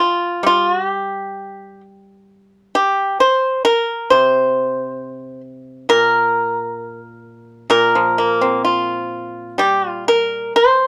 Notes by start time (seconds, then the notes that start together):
Already playing: G3 F4
0.43 G3 F4
0.71 F#4
0.86 G4
2.75 G4
3.20 C5
3.65 A#4
4.10 C3 C5
5.89 A#2 A#4
7.70 A#2 A#4
7.95 F3
8.18 A#3
8.41 C4
8.65 F4
9.58 G3 G4
9.88 F4
10.08 A#4
10.56 C5